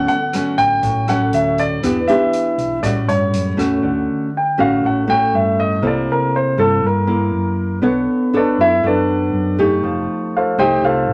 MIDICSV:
0, 0, Header, 1, 5, 480
1, 0, Start_track
1, 0, Key_signature, 2, "major"
1, 0, Tempo, 500000
1, 1758, Time_signature, 4, 2, 24, 8
1, 10688, End_track
2, 0, Start_track
2, 0, Title_t, "Grand piano"
2, 0, Program_c, 0, 0
2, 80, Note_on_c, 0, 78, 89
2, 556, Note_on_c, 0, 79, 104
2, 573, Note_off_c, 0, 78, 0
2, 1047, Note_on_c, 0, 78, 75
2, 1051, Note_off_c, 0, 79, 0
2, 1289, Note_on_c, 0, 76, 76
2, 1290, Note_off_c, 0, 78, 0
2, 1530, Note_off_c, 0, 76, 0
2, 1531, Note_on_c, 0, 74, 85
2, 1992, Note_on_c, 0, 76, 75
2, 2019, Note_off_c, 0, 74, 0
2, 2715, Note_on_c, 0, 74, 72
2, 2738, Note_off_c, 0, 76, 0
2, 2940, Note_off_c, 0, 74, 0
2, 2962, Note_on_c, 0, 73, 75
2, 3407, Note_off_c, 0, 73, 0
2, 4198, Note_on_c, 0, 79, 56
2, 4412, Note_off_c, 0, 79, 0
2, 4420, Note_on_c, 0, 77, 73
2, 4643, Note_off_c, 0, 77, 0
2, 4666, Note_on_c, 0, 78, 64
2, 4886, Note_off_c, 0, 78, 0
2, 4894, Note_on_c, 0, 79, 92
2, 5120, Note_off_c, 0, 79, 0
2, 5136, Note_on_c, 0, 76, 67
2, 5361, Note_off_c, 0, 76, 0
2, 5372, Note_on_c, 0, 75, 77
2, 5599, Note_off_c, 0, 75, 0
2, 5634, Note_on_c, 0, 74, 73
2, 5850, Note_off_c, 0, 74, 0
2, 5874, Note_on_c, 0, 70, 74
2, 6090, Note_off_c, 0, 70, 0
2, 6105, Note_on_c, 0, 72, 63
2, 6325, Note_off_c, 0, 72, 0
2, 6331, Note_on_c, 0, 69, 76
2, 6558, Note_off_c, 0, 69, 0
2, 6590, Note_on_c, 0, 70, 65
2, 7495, Note_off_c, 0, 70, 0
2, 8031, Note_on_c, 0, 69, 53
2, 8031, Note_on_c, 0, 74, 64
2, 8033, Note_on_c, 0, 71, 51
2, 8037, Note_on_c, 0, 62, 54
2, 8248, Note_off_c, 0, 69, 0
2, 8248, Note_off_c, 0, 74, 0
2, 8249, Note_off_c, 0, 71, 0
2, 8251, Note_off_c, 0, 62, 0
2, 8262, Note_on_c, 0, 64, 71
2, 8265, Note_on_c, 0, 76, 91
2, 8483, Note_off_c, 0, 64, 0
2, 8484, Note_off_c, 0, 76, 0
2, 8511, Note_on_c, 0, 74, 69
2, 8514, Note_on_c, 0, 69, 51
2, 8517, Note_on_c, 0, 71, 48
2, 8518, Note_on_c, 0, 62, 54
2, 9175, Note_off_c, 0, 74, 0
2, 9176, Note_off_c, 0, 69, 0
2, 9178, Note_off_c, 0, 62, 0
2, 9178, Note_off_c, 0, 71, 0
2, 9951, Note_on_c, 0, 77, 58
2, 9956, Note_on_c, 0, 69, 50
2, 9960, Note_on_c, 0, 72, 45
2, 9963, Note_on_c, 0, 65, 46
2, 10154, Note_off_c, 0, 72, 0
2, 10166, Note_off_c, 0, 77, 0
2, 10168, Note_on_c, 0, 72, 68
2, 10169, Note_off_c, 0, 69, 0
2, 10170, Note_on_c, 0, 67, 71
2, 10171, Note_on_c, 0, 79, 87
2, 10172, Note_off_c, 0, 65, 0
2, 10172, Note_on_c, 0, 75, 69
2, 10394, Note_off_c, 0, 72, 0
2, 10395, Note_off_c, 0, 67, 0
2, 10396, Note_off_c, 0, 75, 0
2, 10396, Note_off_c, 0, 79, 0
2, 10412, Note_on_c, 0, 77, 67
2, 10416, Note_on_c, 0, 65, 58
2, 10418, Note_on_c, 0, 72, 57
2, 10420, Note_on_c, 0, 69, 53
2, 10688, Note_off_c, 0, 65, 0
2, 10688, Note_off_c, 0, 69, 0
2, 10688, Note_off_c, 0, 72, 0
2, 10688, Note_off_c, 0, 77, 0
2, 10688, End_track
3, 0, Start_track
3, 0, Title_t, "Nylon-string guitar"
3, 0, Program_c, 1, 24
3, 0, Note_on_c, 1, 50, 57
3, 0, Note_on_c, 1, 54, 56
3, 0, Note_on_c, 1, 57, 50
3, 0, Note_on_c, 1, 61, 61
3, 148, Note_off_c, 1, 54, 0
3, 150, Note_off_c, 1, 57, 0
3, 151, Note_off_c, 1, 61, 0
3, 324, Note_on_c, 1, 54, 52
3, 330, Note_on_c, 1, 57, 52
3, 335, Note_on_c, 1, 61, 59
3, 775, Note_off_c, 1, 50, 0
3, 796, Note_on_c, 1, 45, 52
3, 1003, Note_off_c, 1, 54, 0
3, 1006, Note_off_c, 1, 57, 0
3, 1008, Note_off_c, 1, 61, 0
3, 1036, Note_on_c, 1, 54, 58
3, 1040, Note_on_c, 1, 57, 53
3, 1048, Note_on_c, 1, 61, 58
3, 1719, Note_off_c, 1, 54, 0
3, 1722, Note_off_c, 1, 57, 0
3, 1724, Note_off_c, 1, 61, 0
3, 1733, Note_off_c, 1, 45, 0
3, 1756, Note_on_c, 1, 52, 55
3, 1759, Note_on_c, 1, 59, 52
3, 1767, Note_on_c, 1, 62, 52
3, 1771, Note_on_c, 1, 67, 56
3, 1901, Note_off_c, 1, 59, 0
3, 1902, Note_off_c, 1, 67, 0
3, 1903, Note_off_c, 1, 62, 0
3, 2003, Note_on_c, 1, 59, 59
3, 2007, Note_on_c, 1, 62, 58
3, 2011, Note_on_c, 1, 67, 57
3, 2683, Note_off_c, 1, 59, 0
3, 2685, Note_off_c, 1, 62, 0
3, 2686, Note_off_c, 1, 67, 0
3, 2694, Note_off_c, 1, 52, 0
3, 2712, Note_on_c, 1, 45, 53
3, 2717, Note_on_c, 1, 55, 47
3, 2718, Note_on_c, 1, 61, 45
3, 2721, Note_on_c, 1, 66, 54
3, 3399, Note_off_c, 1, 55, 0
3, 3401, Note_off_c, 1, 61, 0
3, 3401, Note_off_c, 1, 66, 0
3, 3427, Note_on_c, 1, 57, 55
3, 3433, Note_on_c, 1, 61, 58
3, 3438, Note_on_c, 1, 66, 61
3, 3653, Note_off_c, 1, 45, 0
3, 3673, Note_on_c, 1, 50, 52
3, 4115, Note_off_c, 1, 57, 0
3, 4118, Note_off_c, 1, 61, 0
3, 4120, Note_off_c, 1, 66, 0
3, 4394, Note_on_c, 1, 57, 60
3, 4401, Note_on_c, 1, 61, 65
3, 4405, Note_on_c, 1, 66, 60
3, 4612, Note_off_c, 1, 50, 0
3, 4638, Note_on_c, 1, 45, 49
3, 4838, Note_off_c, 1, 57, 0
3, 4842, Note_off_c, 1, 61, 0
3, 4842, Note_off_c, 1, 66, 0
3, 4872, Note_on_c, 1, 57, 58
3, 4875, Note_on_c, 1, 61, 50
3, 4882, Note_on_c, 1, 66, 60
3, 5557, Note_off_c, 1, 57, 0
3, 5559, Note_off_c, 1, 61, 0
3, 5561, Note_off_c, 1, 66, 0
3, 5575, Note_off_c, 1, 45, 0
3, 5590, Note_on_c, 1, 48, 59
3, 5592, Note_on_c, 1, 58, 56
3, 5596, Note_on_c, 1, 64, 50
3, 5600, Note_on_c, 1, 69, 65
3, 6276, Note_off_c, 1, 58, 0
3, 6278, Note_off_c, 1, 64, 0
3, 6281, Note_off_c, 1, 69, 0
3, 6312, Note_on_c, 1, 58, 54
3, 6317, Note_on_c, 1, 64, 53
3, 6319, Note_on_c, 1, 69, 62
3, 6531, Note_off_c, 1, 48, 0
3, 6757, Note_off_c, 1, 58, 0
3, 6758, Note_off_c, 1, 64, 0
3, 6760, Note_off_c, 1, 69, 0
3, 6790, Note_on_c, 1, 58, 60
3, 6791, Note_on_c, 1, 64, 59
3, 7475, Note_off_c, 1, 64, 0
3, 7476, Note_off_c, 1, 58, 0
3, 7504, Note_on_c, 1, 59, 60
3, 7509, Note_on_c, 1, 62, 57
3, 7513, Note_on_c, 1, 69, 54
3, 7517, Note_on_c, 1, 73, 65
3, 7954, Note_off_c, 1, 62, 0
3, 7957, Note_off_c, 1, 69, 0
3, 7958, Note_off_c, 1, 73, 0
3, 8001, Note_on_c, 1, 62, 56
3, 8008, Note_on_c, 1, 69, 54
3, 8008, Note_on_c, 1, 73, 64
3, 8309, Note_off_c, 1, 62, 0
3, 8310, Note_off_c, 1, 69, 0
3, 8312, Note_off_c, 1, 73, 0
3, 8447, Note_off_c, 1, 59, 0
3, 8476, Note_on_c, 1, 62, 51
3, 8480, Note_on_c, 1, 54, 55
3, 8482, Note_on_c, 1, 69, 51
3, 9158, Note_off_c, 1, 62, 0
3, 9160, Note_off_c, 1, 69, 0
3, 9202, Note_on_c, 1, 57, 61
3, 9209, Note_on_c, 1, 63, 63
3, 9209, Note_on_c, 1, 67, 71
3, 9414, Note_off_c, 1, 54, 0
3, 9439, Note_on_c, 1, 53, 61
3, 10120, Note_off_c, 1, 57, 0
3, 10122, Note_off_c, 1, 63, 0
3, 10123, Note_off_c, 1, 67, 0
3, 10160, Note_on_c, 1, 57, 55
3, 10161, Note_on_c, 1, 63, 67
3, 10166, Note_on_c, 1, 67, 65
3, 10372, Note_off_c, 1, 53, 0
3, 10399, Note_on_c, 1, 48, 53
3, 10688, Note_off_c, 1, 48, 0
3, 10688, Note_off_c, 1, 57, 0
3, 10688, Note_off_c, 1, 63, 0
3, 10688, Note_off_c, 1, 67, 0
3, 10688, End_track
4, 0, Start_track
4, 0, Title_t, "Fingered electric bass"
4, 0, Program_c, 2, 33
4, 558, Note_on_c, 2, 33, 72
4, 781, Note_off_c, 2, 33, 0
4, 796, Note_on_c, 2, 33, 83
4, 1243, Note_off_c, 2, 33, 0
4, 1273, Note_on_c, 2, 38, 79
4, 1722, Note_off_c, 2, 38, 0
4, 2476, Note_on_c, 2, 35, 68
4, 2700, Note_off_c, 2, 35, 0
4, 2721, Note_on_c, 2, 33, 83
4, 2944, Note_off_c, 2, 33, 0
4, 2956, Note_on_c, 2, 43, 77
4, 3173, Note_off_c, 2, 43, 0
4, 3193, Note_on_c, 2, 42, 67
4, 3412, Note_off_c, 2, 42, 0
4, 3438, Note_on_c, 2, 40, 67
4, 3655, Note_off_c, 2, 40, 0
4, 3677, Note_on_c, 2, 38, 95
4, 3902, Note_off_c, 2, 38, 0
4, 4403, Note_on_c, 2, 33, 73
4, 4625, Note_off_c, 2, 33, 0
4, 4643, Note_on_c, 2, 33, 81
4, 5088, Note_off_c, 2, 33, 0
4, 5117, Note_on_c, 2, 43, 73
4, 5564, Note_off_c, 2, 43, 0
4, 5588, Note_on_c, 2, 36, 93
4, 5817, Note_off_c, 2, 36, 0
4, 6313, Note_on_c, 2, 43, 78
4, 6539, Note_off_c, 2, 43, 0
4, 6548, Note_on_c, 2, 43, 97
4, 7000, Note_off_c, 2, 43, 0
4, 7024, Note_on_c, 2, 42, 77
4, 7477, Note_off_c, 2, 42, 0
4, 7511, Note_on_c, 2, 35, 93
4, 7737, Note_off_c, 2, 35, 0
4, 8237, Note_on_c, 2, 42, 79
4, 8460, Note_off_c, 2, 42, 0
4, 8478, Note_on_c, 2, 42, 93
4, 8924, Note_off_c, 2, 42, 0
4, 8954, Note_on_c, 2, 42, 82
4, 9401, Note_off_c, 2, 42, 0
4, 9430, Note_on_c, 2, 29, 93
4, 9656, Note_off_c, 2, 29, 0
4, 10155, Note_on_c, 2, 36, 75
4, 10378, Note_off_c, 2, 36, 0
4, 10383, Note_on_c, 2, 36, 92
4, 10612, Note_off_c, 2, 36, 0
4, 10625, Note_on_c, 2, 45, 82
4, 10688, Note_off_c, 2, 45, 0
4, 10688, End_track
5, 0, Start_track
5, 0, Title_t, "Drums"
5, 78, Note_on_c, 9, 42, 24
5, 174, Note_off_c, 9, 42, 0
5, 318, Note_on_c, 9, 37, 56
5, 318, Note_on_c, 9, 42, 40
5, 414, Note_off_c, 9, 37, 0
5, 414, Note_off_c, 9, 42, 0
5, 557, Note_on_c, 9, 36, 23
5, 557, Note_on_c, 9, 42, 23
5, 653, Note_off_c, 9, 36, 0
5, 653, Note_off_c, 9, 42, 0
5, 795, Note_on_c, 9, 42, 40
5, 796, Note_on_c, 9, 36, 53
5, 891, Note_off_c, 9, 42, 0
5, 892, Note_off_c, 9, 36, 0
5, 1035, Note_on_c, 9, 37, 53
5, 1035, Note_on_c, 9, 42, 26
5, 1131, Note_off_c, 9, 37, 0
5, 1131, Note_off_c, 9, 42, 0
5, 1274, Note_on_c, 9, 42, 40
5, 1370, Note_off_c, 9, 42, 0
5, 1516, Note_on_c, 9, 36, 23
5, 1517, Note_on_c, 9, 42, 26
5, 1612, Note_off_c, 9, 36, 0
5, 1613, Note_off_c, 9, 42, 0
5, 1758, Note_on_c, 9, 36, 52
5, 1759, Note_on_c, 9, 37, 55
5, 1759, Note_on_c, 9, 42, 41
5, 1854, Note_off_c, 9, 36, 0
5, 1855, Note_off_c, 9, 37, 0
5, 1855, Note_off_c, 9, 42, 0
5, 1999, Note_on_c, 9, 42, 23
5, 2095, Note_off_c, 9, 42, 0
5, 2238, Note_on_c, 9, 42, 42
5, 2334, Note_off_c, 9, 42, 0
5, 2478, Note_on_c, 9, 36, 22
5, 2480, Note_on_c, 9, 42, 28
5, 2574, Note_off_c, 9, 36, 0
5, 2576, Note_off_c, 9, 42, 0
5, 2718, Note_on_c, 9, 36, 57
5, 2719, Note_on_c, 9, 37, 53
5, 2719, Note_on_c, 9, 42, 42
5, 2814, Note_off_c, 9, 36, 0
5, 2815, Note_off_c, 9, 37, 0
5, 2815, Note_off_c, 9, 42, 0
5, 2963, Note_on_c, 9, 42, 27
5, 3059, Note_off_c, 9, 42, 0
5, 3201, Note_on_c, 9, 42, 43
5, 3297, Note_off_c, 9, 42, 0
5, 3439, Note_on_c, 9, 36, 22
5, 3446, Note_on_c, 9, 37, 53
5, 3446, Note_on_c, 9, 42, 26
5, 3535, Note_off_c, 9, 36, 0
5, 3542, Note_off_c, 9, 37, 0
5, 3542, Note_off_c, 9, 42, 0
5, 10688, End_track
0, 0, End_of_file